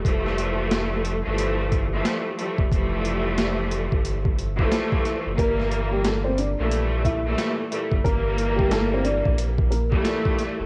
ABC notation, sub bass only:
X:1
M:4/4
L:1/16
Q:"Swing 16ths" 1/4=90
K:Gdor
V:1 name="Sub bass" clef=bass
F,,,6- F,,, G,,,4- G,,, z3 E,,, | F,,,6- F,,, G,,,4- G,,, z3 ^F,,, | G,,,6- G,,, B,,,4- B,,, z3 ^F,,, | G,,,6- G,,, B,,,4- B,,, z3 E,,, |]